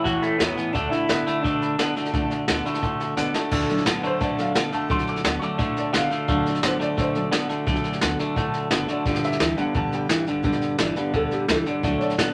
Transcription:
0.04 E2 A2 E3 A3 C#4 E4 F#4 C#5 E5 A5, kick, snare
0.09 A4
0.21 A3 C#4 E4 A4 C#5 E5 B5, snare
0.38 E2 A2 E3 F#3 A3 B3 C#4 E4 A4 C#5 E5 F#5, snare, hi-hat pedal
0.56 A2 E3 A3 C#4 E4 A4 C#5 E5 A5, muted upright bass stroke, snare
0.73 D2 D3 A3 D4 F#4 A4 D5 F#5 A5, kick, snare
0.90 E4 F#4 A4 D5 F#5 A5, snare
1.08 A2 D3 A3 B3 D4 F#4 D5 C6, snare, hi-hat pedal
1.26 D3 A3 D4 F#4 A4 D5 F#5 B5, muted upright bass stroke, snare
1.43 B2 D3 A3 D4 F#4 A4 D5 F#5 A5, kick, snare
1.61 D4 F#4 A4 D5 F#5 B5, snare
1.79 A2 D3 A3 B3 D4 F#4 A4 D5 F#5 A5, snare, hi-hat pedal
1.95 F#2 D3 A3 D4 F#4 A4 D5 F#5 A5, snare
2.05 snare
2.13 C2 D3 A3 D4 F#4 A4 D5 F#5 A5, kick, snare
2.30 D4 F#4 A4 D5 F#5 A5, snare
2.48 D2 D3 A3 B3 D4 F#4 A4 D5 F#5 A5, snare, hi-hat pedal
2.65 D3 A3 F#4 A4 D5 F#5 B5, snare
2.69 D4
2.74 snare
2.82 A2 D3 A3 D4 F#4 A4 D5 F#5 C6, kick, snare
3.00 D4 F#4 A4 D5 F#5 A5, snare
3.17 B2 D3 A3 B3 D4 F#4 A4 D5 F#5 A5, snare, hi-hat pedal
3.34 D3 A3 D4 F#4 A4 D5 F#5 A5, muted upright bass stroke, snare
3.51 D2 D3 A3 D4 F#4 A4, kick, snare, crash
3.60 snare
3.69 F#3 A3 D4 F#4 A4, muted upright bass stroke, snare
3.77 snare
3.86 A2 D3 A3 B3 D4 F#4 A4, snare, hi-hat pedal
4.02 D3 A3 F#4 A4 B4, muted upright bass stroke, snare
4.06 D4 C5
4.20 B2 D3 A3 D4 F#4 A4 D5, kick, snare
4.37 F#3 A3 D4 F#4 A4 F5, muted upright bass stroke, snare
4.54 A2 D3 A3 B3 D4 F#4 A4, snare, hi-hat pedal
4.72 F#2 D3 A3 D4 F#4 A4 A5, snare
4.88 C2 D3 F#3 A3 D4 F#4 A4 C6, kick, snare
4.99 snare
5.05 D4 F#4 A4 D6, snare
5.16 snare
5.23 D2 D3 A3 B3 D4 F#4 A4, snare, hi-hat pedal
5.39 D3 F#3 A3 D4 F#4 A4 C#6, snare
5.44 D4 D6
5.58 A2 D3 A3 D4 F#4 A4, kick, snare
5.76 D4 F#4 A4 D5, snare
5.92 B2 D3 A3 B3 D4 F#4 A4 E5, snare, hi-hat pedal
5.97 F5
6.10 D3 A3 D4 F#4 A4, muted upright bass stroke, snare
6.28 D2 D3 F#3 A3 D4 F#4 A4, kick, snare
6.44 D4 F#4 A4 D5, snare
6.55 snare
6.62 A2 D3 A3 B3 D4 F#4 A4 C5, snare, hi-hat pedal
6.79 D3 A3 D4 F#4 A4 D5, muted upright bass stroke, snare
6.97 B2 D3 A3 D4 F#4 A4 C5, kick, snare
7.15 F#3 A3 D4 F#4 A4 D5, muted upright bass stroke, snare
7.31 A2 D3 A3 B3 D4 F#4 A4, snare, hi-hat pedal
7.49 F#2 D3 A3 F#4 A4, snare
7.54 D4
7.66 C2 D3 F#3 A3 D4 F#4 A4, kick, snare
7.75 snare
7.84 F#4 A4, snare
7.88 D4
7.93 snare
8.01 D2 D3 A3 B3 D4 F#4 A4, snare, hi-hat pedal
8.19 D3 A3 F#4 A4, snare
8.23 D4
8.36 A2 D3 A3 D4 F#4, kick, snare
8.41 A4
8.53 D4 F#4 A4, snare
8.71 F#1 D3 A3 B3 D4 F#4 A4, snare, hi-hat pedal
8.88 D3 A3 D4 F#4 A4 D5, muted upright bass stroke, snare
9.05 G1 G2 D3 G3 D4 G4 B4, kick, snare
9.15 snare
9.22 D4 G4 B4 E5, muted upright bass stroke, snare
9.32 snare
9.40 D2 G2 E3 G3 D4 G4 B4, snare, hi-hat pedal
9.55 G2 D3 G3 B3 D4 G4 B4, snare
9.60 F#5
9.74 E2 G2 D3 G3 D4 G4 B4 A5, kick, snare
9.91 D4 G4 B4 G5, snare
10.09 D2 G2 E3 G3 D4 G4 B4, snare, hi-hat pedal
10.25 B1 G2 D3 D4 G4 B4, snare
10.43 E1 G2 D3 G3 B3 D4 G4 B4, kick, snare
10.52 snare
10.61 D4 G4 B4, snare
10.78 G1 G2 E3 G3 D4 G4 B4 D5, snare, hi-hat pedal
10.95 G2 D3 G3 B3 D4 G4 B4, snare
11.13 D2 G2 D3 G3 D4 G4 A4 B4, kick, snare
11.30 D4 G4 B4, snare
11.48 C#2 G2 E3 G3 D4 G4 A4 B4, snare, hi-hat pedal
11.66 G2 D3 G4 B4 D5, snare
11.83 D2 D3 F#3 A3 D4 F#4 A4, kick, snare
11.98 F#4 A4 C#5, snare
12.02 D4 D5
12.10 snare
12.17 A2 D3 A3 B3 D4 F#4 A4, snare, hi-hat pedal

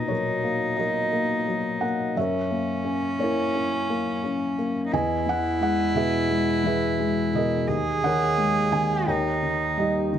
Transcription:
Already playing: A#2 B2 D#4 F#4 B4
0.08 F#3 F#4 A#4 C#5
0.44 A#3
0.77 F#3 F#4 A#4 D#5
1.12 A#3
1.47 F#3
1.81 A#3 F#5
2.16 F#2 C#4 A#4 E5
2.20 C#5
2.51 A#3
2.85 C#4
3.19 A#3 E4 C#5
3.23 A#4
3.55 C#4
3.90 A#3
4.24 C#4
4.59 A#3
4.86 D#4
4.92 E2 E4 B4 D#5 G#5
5.26 E3 F#5
5.61 G#3 F#5
5.95 B2 G#4 B4 E5
6.30 G#3
6.63 E3 B4 E5
6.67 G#4
6.99 G#3
7.34 B2 G#4 A#4 D#5
7.68 D#2 G#4
8.03 D#3 A#4 C#5 F#5
8.37 G#3
8.72 D#3 G#5
9.07 D#2 D#4 A#4 C#5 G5
9.43 D#3
9.77 G3 D#4 G4 D#5
10.13 D#3

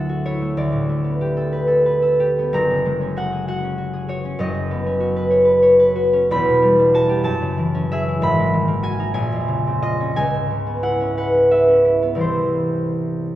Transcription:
Already playing: D2 A2 F#3 A3 D4 E4 A4 D5 F#5 A5
0.09 F#4
0.26 E4 C#5
0.42 A3
0.57 D2 D5
0.72 A2
0.89 A3
1.04 B3
1.21 G4
1.37 A4
1.53 B4
1.68 A4
1.86 B4
2.02 A4
2.20 G4
2.39 B3
2.53 F#1 F#2 A#5
2.71 C#3
2.86 G#3
3.01 C#4
3.16 F#4 F#5
3.32 G#4
3.48 F#4 F#5
3.63 C#4
3.78 F#4
3.93 G#4
4.08 F#4 C#5
4.25 C#4
4.39 F#1 F#2 D#5
4.55 C#3
4.71 B3
4.86 C#4
5.00 F#4
5.16 B4
5.30 C#5
5.45 B4
5.62 C#5
5.80 B4
5.96 F#4
6.13 C#4
6.31 E1 E2 B5
6.49 B2
6.62 G3
6.79 D4
6.94 F#4 A5
7.09 G4
7.24 F#2 A5
7.42 C#3
7.58 E3
7.75 C#4
7.92 G#4 E5
8.08 E4
8.22 G#1 G#2 B5
8.39 G#3
8.54 D#3
8.68 A#3
8.83 F#4 G#5
9.00 D#4
9.14 A#1 G#5
9.32 F2
9.48 C#3
9.67 C4
9.82 F4 D#5
10.00 C#4
10.16 C#2 G#5
10.34 G#2
10.51 C#3
10.66 B3
10.83 E4 F#5
11.00 C#4
11.17 B4 F#5
11.34 C#4
11.51 B4 E5
11.68 C#4
11.85 E4
12.02 B3
12.15 C2 E3 B3 E4
12.21 C5

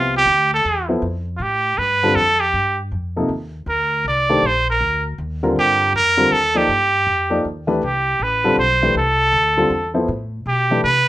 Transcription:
Already playing: C2 C3 F3 B3 E4 F4 G4
0.17 G4
0.26 D2
0.54 A4
0.65 E2
0.89 F3 B3 E4 A4 C5
1.02 F2
1.37 A2 F4
1.42 G4
1.78 G2 B4
2.03 D3 G3 C4 F4 A4
2.15 F2 A4
2.40 G4
2.54 G2
2.92 F2
3.16 C3 F3 A#3 D#4 A4
3.29 D#2
3.66 D2 A#4
4.04 C2 D5
4.30 D#3 A3 D4 G4 C5
4.43 A#1 C5
4.70 A#4
4.81 D2
5.18 D#2
5.43 D3 G3 C4 F4 A#4
5.56 G2 G4
5.93 F2 A#4
6.17 D3 G3 C4 F4 A#4
6.31 D#2 A4
6.54 F3 A#3 D#4 G4 A4 D5
6.68 G2
7.07 F2
7.30 F3 A#3 D#4 A4 D5
7.45 D#2
7.67 E3 A3 D4 G4 B4
7.82 C2 G4
8.19 A1 B4
8.44 D3 G3 C4 F4 A4
8.58 B1 C5
8.83 E3 A3 D4 G4 B4
8.95 C2 A4
9.32 D2
9.57 D3 G3 C4 F4 A4
9.70 E2
9.94 F3 B3 E4 A4 C5
10.08 A2
10.46 B2 G4
10.71 E3 A3 D4 G4 B4
10.84 C3 B4

